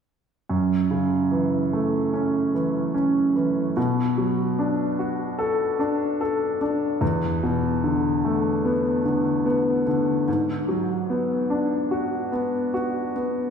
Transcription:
0, 0, Header, 1, 2, 480
1, 0, Start_track
1, 0, Key_signature, 3, "minor"
1, 0, Tempo, 816327
1, 297, Time_signature, 4, 2, 24, 8
1, 7939, End_track
2, 0, Start_track
2, 0, Title_t, "Grand piano"
2, 0, Program_c, 0, 0
2, 291, Note_on_c, 0, 42, 40
2, 416, Control_c, 0, 64, 127
2, 533, Note_on_c, 0, 49, 31
2, 773, Note_on_c, 0, 52, 33
2, 1018, Note_on_c, 0, 57, 32
2, 1254, Note_on_c, 0, 61, 38
2, 1473, Note_off_c, 0, 49, 0
2, 1488, Note_off_c, 0, 52, 0
2, 1496, Note_on_c, 0, 52, 33
2, 1722, Note_off_c, 0, 61, 0
2, 1731, Note_on_c, 0, 61, 36
2, 1954, Note_off_c, 0, 57, 0
2, 1965, Note_off_c, 0, 52, 0
2, 1974, Note_on_c, 0, 52, 32
2, 2190, Note_off_c, 0, 42, 0
2, 2199, Note_off_c, 0, 61, 0
2, 2208, Note_off_c, 0, 52, 0
2, 2214, Note_on_c, 0, 47, 45
2, 2224, Control_c, 0, 64, 0
2, 2339, Control_c, 0, 64, 127
2, 2456, Note_on_c, 0, 54, 33
2, 2697, Note_on_c, 0, 62, 37
2, 2934, Note_on_c, 0, 66, 34
2, 3167, Note_on_c, 0, 69, 43
2, 3386, Note_off_c, 0, 54, 0
2, 3398, Note_off_c, 0, 62, 0
2, 3406, Note_on_c, 0, 62, 36
2, 3641, Note_off_c, 0, 69, 0
2, 3650, Note_on_c, 0, 69, 39
2, 3865, Note_off_c, 0, 66, 0
2, 3879, Note_off_c, 0, 62, 0
2, 3888, Note_on_c, 0, 62, 36
2, 4103, Note_off_c, 0, 47, 0
2, 4114, Note_off_c, 0, 69, 0
2, 4120, Note_off_c, 0, 62, 0
2, 4122, Note_on_c, 0, 40, 45
2, 4136, Control_c, 0, 64, 0
2, 4231, Control_c, 0, 64, 127
2, 4370, Note_on_c, 0, 47, 33
2, 4609, Note_on_c, 0, 50, 40
2, 4849, Note_on_c, 0, 57, 36
2, 5086, Note_on_c, 0, 59, 41
2, 5303, Note_off_c, 0, 47, 0
2, 5314, Note_off_c, 0, 50, 0
2, 5323, Note_on_c, 0, 50, 34
2, 5552, Note_off_c, 0, 59, 0
2, 5561, Note_on_c, 0, 59, 36
2, 5782, Note_off_c, 0, 57, 0
2, 5795, Note_off_c, 0, 50, 0
2, 5804, Note_on_c, 0, 50, 34
2, 6018, Note_off_c, 0, 40, 0
2, 6027, Note_off_c, 0, 59, 0
2, 6036, Note_off_c, 0, 50, 0
2, 6045, Note_on_c, 0, 44, 44
2, 6052, Control_c, 0, 64, 0
2, 6158, Control_c, 0, 64, 127
2, 6282, Note_on_c, 0, 54, 35
2, 6525, Note_on_c, 0, 59, 36
2, 6763, Note_on_c, 0, 62, 35
2, 7004, Note_on_c, 0, 66, 40
2, 7222, Note_off_c, 0, 54, 0
2, 7236, Note_off_c, 0, 59, 0
2, 7245, Note_on_c, 0, 59, 37
2, 7482, Note_off_c, 0, 66, 0
2, 7491, Note_on_c, 0, 66, 39
2, 7707, Note_off_c, 0, 62, 0
2, 7728, Note_off_c, 0, 59, 0
2, 7736, Note_on_c, 0, 59, 32
2, 7939, Note_off_c, 0, 44, 0
2, 7939, Note_off_c, 0, 59, 0
2, 7939, Note_off_c, 0, 66, 0
2, 7939, End_track
0, 0, End_of_file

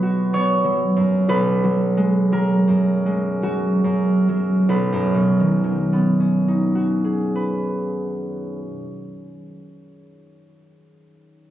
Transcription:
0, 0, Header, 1, 2, 480
1, 0, Start_track
1, 0, Key_signature, 5, "major"
1, 0, Tempo, 937500
1, 651, Time_signature, 3, 2, 24, 8
1, 651, Tempo, 1022147
1, 1131, Tempo, 1127820
1, 1611, Tempo, 1234568
1, 2091, Tempo, 1178782
1, 3051, Tempo, 1140684
1, 4941, End_track
2, 0, Start_track
2, 0, Title_t, "Harp"
2, 0, Program_c, 0, 46
2, 0, Note_on_c, 0, 35, 59
2, 0, Note_on_c, 0, 54, 48
2, 0, Note_on_c, 0, 59, 50
2, 0, Note_on_c, 0, 63, 44
2, 0, Note_on_c, 0, 71, 46
2, 0, Note_on_c, 0, 73, 79
2, 0, Note_on_c, 0, 75, 83
2, 14, Note_on_c, 0, 66, 50
2, 163, Note_off_c, 0, 59, 0
2, 167, Note_off_c, 0, 73, 0
2, 169, Note_on_c, 0, 59, 52
2, 173, Note_on_c, 0, 73, 77
2, 321, Note_off_c, 0, 54, 0
2, 328, Note_on_c, 0, 54, 47
2, 478, Note_off_c, 0, 63, 0
2, 494, Note_on_c, 0, 42, 48
2, 652, Note_off_c, 0, 35, 0
2, 654, Note_off_c, 0, 71, 0
2, 657, Note_on_c, 0, 35, 56
2, 660, Note_on_c, 0, 71, 82
2, 673, Note_off_c, 0, 42, 0
2, 816, Note_off_c, 0, 54, 0
2, 822, Note_on_c, 0, 54, 45
2, 980, Note_on_c, 0, 56, 45
2, 1139, Note_off_c, 0, 54, 0
2, 1142, Note_on_c, 0, 54, 49
2, 1145, Note_on_c, 0, 70, 73
2, 1293, Note_on_c, 0, 42, 42
2, 1378, Note_off_c, 0, 75, 0
2, 1451, Note_off_c, 0, 56, 0
2, 1456, Note_on_c, 0, 56, 42
2, 1608, Note_off_c, 0, 54, 0
2, 1609, Note_off_c, 0, 66, 0
2, 1611, Note_on_c, 0, 54, 39
2, 1615, Note_on_c, 0, 66, 59
2, 1769, Note_off_c, 0, 42, 0
2, 1774, Note_on_c, 0, 42, 39
2, 1925, Note_off_c, 0, 59, 0
2, 1928, Note_off_c, 0, 73, 0
2, 1941, Note_off_c, 0, 54, 0
2, 1946, Note_on_c, 0, 54, 36
2, 2099, Note_off_c, 0, 35, 0
2, 2100, Note_off_c, 0, 71, 0
2, 2103, Note_on_c, 0, 35, 47
2, 2106, Note_on_c, 0, 71, 46
2, 2113, Note_off_c, 0, 42, 0
2, 2116, Note_off_c, 0, 70, 0
2, 2201, Note_on_c, 0, 42, 45
2, 2290, Note_on_c, 0, 47, 45
2, 2393, Note_on_c, 0, 51, 39
2, 2485, Note_off_c, 0, 54, 0
2, 2490, Note_on_c, 0, 54, 38
2, 2608, Note_on_c, 0, 59, 39
2, 2719, Note_on_c, 0, 61, 38
2, 2834, Note_on_c, 0, 63, 36
2, 2940, Note_off_c, 0, 66, 0
2, 2944, Note_on_c, 0, 66, 38
2, 3028, Note_off_c, 0, 56, 0
2, 3064, Note_on_c, 0, 68, 35
2, 3189, Note_off_c, 0, 71, 0
2, 3194, Note_on_c, 0, 71, 35
2, 3713, Note_off_c, 0, 35, 0
2, 3813, Note_off_c, 0, 42, 0
2, 3906, Note_off_c, 0, 47, 0
2, 3976, Note_off_c, 0, 59, 0
2, 4012, Note_off_c, 0, 51, 0
2, 4025, Note_off_c, 0, 54, 0
2, 4091, Note_off_c, 0, 61, 0
2, 4146, Note_off_c, 0, 68, 0
2, 4147, Note_off_c, 0, 66, 0
2, 4148, Note_off_c, 0, 71, 0
2, 4151, Note_off_c, 0, 63, 0
2, 4941, End_track
0, 0, End_of_file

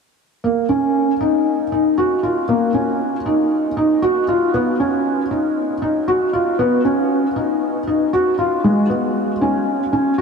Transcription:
0, 0, Header, 1, 2, 480
1, 0, Start_track
1, 0, Key_signature, -6, "minor"
1, 0, Tempo, 512821
1, 412, Time_signature, 4, 2, 24, 8
1, 9561, End_track
2, 0, Start_track
2, 0, Title_t, "Felt piano"
2, 0, Program_c, 0, 0
2, 411, Note_on_c, 0, 58, 69
2, 604, Note_off_c, 0, 58, 0
2, 647, Note_on_c, 0, 61, 54
2, 1034, Note_off_c, 0, 61, 0
2, 1128, Note_on_c, 0, 63, 63
2, 1514, Note_off_c, 0, 63, 0
2, 1611, Note_on_c, 0, 63, 65
2, 1803, Note_off_c, 0, 63, 0
2, 1851, Note_on_c, 0, 66, 68
2, 2043, Note_off_c, 0, 66, 0
2, 2088, Note_on_c, 0, 65, 62
2, 2282, Note_off_c, 0, 65, 0
2, 2327, Note_on_c, 0, 58, 74
2, 2521, Note_off_c, 0, 58, 0
2, 2567, Note_on_c, 0, 61, 63
2, 2953, Note_off_c, 0, 61, 0
2, 3048, Note_on_c, 0, 63, 65
2, 3434, Note_off_c, 0, 63, 0
2, 3527, Note_on_c, 0, 63, 70
2, 3721, Note_off_c, 0, 63, 0
2, 3766, Note_on_c, 0, 66, 75
2, 3960, Note_off_c, 0, 66, 0
2, 4010, Note_on_c, 0, 65, 68
2, 4203, Note_off_c, 0, 65, 0
2, 4249, Note_on_c, 0, 59, 74
2, 4443, Note_off_c, 0, 59, 0
2, 4490, Note_on_c, 0, 61, 64
2, 4875, Note_off_c, 0, 61, 0
2, 4968, Note_on_c, 0, 63, 60
2, 5354, Note_off_c, 0, 63, 0
2, 5447, Note_on_c, 0, 63, 70
2, 5641, Note_off_c, 0, 63, 0
2, 5689, Note_on_c, 0, 66, 72
2, 5882, Note_off_c, 0, 66, 0
2, 5927, Note_on_c, 0, 65, 65
2, 6121, Note_off_c, 0, 65, 0
2, 6167, Note_on_c, 0, 59, 77
2, 6361, Note_off_c, 0, 59, 0
2, 6410, Note_on_c, 0, 61, 64
2, 6795, Note_off_c, 0, 61, 0
2, 6889, Note_on_c, 0, 63, 65
2, 7275, Note_off_c, 0, 63, 0
2, 7370, Note_on_c, 0, 63, 67
2, 7563, Note_off_c, 0, 63, 0
2, 7611, Note_on_c, 0, 66, 71
2, 7804, Note_off_c, 0, 66, 0
2, 7849, Note_on_c, 0, 65, 66
2, 8042, Note_off_c, 0, 65, 0
2, 8088, Note_on_c, 0, 56, 73
2, 8282, Note_off_c, 0, 56, 0
2, 8327, Note_on_c, 0, 59, 62
2, 8714, Note_off_c, 0, 59, 0
2, 8811, Note_on_c, 0, 61, 62
2, 9196, Note_off_c, 0, 61, 0
2, 9292, Note_on_c, 0, 61, 69
2, 9484, Note_off_c, 0, 61, 0
2, 9530, Note_on_c, 0, 66, 76
2, 9561, Note_off_c, 0, 66, 0
2, 9561, End_track
0, 0, End_of_file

